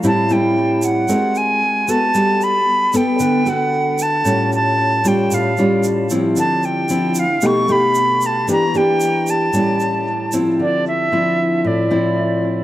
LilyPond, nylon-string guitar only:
\new Staff \with { instrumentName = "Nylon-string guitar" } { \time 4/4 \key d \minor \tempo 4 = 114 << { <g c' e'>8 <g c' e'>4. <bis fis' ais'>4. <b fis' a'>8~ | <b fis' a'>4 r8 <b a'>4 <b fis' a'>4. | <g cis' eis'>4. <g cis' eis'>4 <g cis' eis'>4 <eis bis e'>8~ | <eis bis e'>4 <f c' e'>8 r8 <a dis' g'>8 <a dis' g'>4. |
<bes d' g'>8 <bes d' g'>4. <g bes cis'>4 r8 <f c' e'>8~ | <f c' e'>4 <f c' e'>4. <f c' e'>4. | } \\ { a,2 gis2 | g2 d2 | a,2 a,2 | d2 b,2 |
e2 a,2 | d2 a,2 | } >> }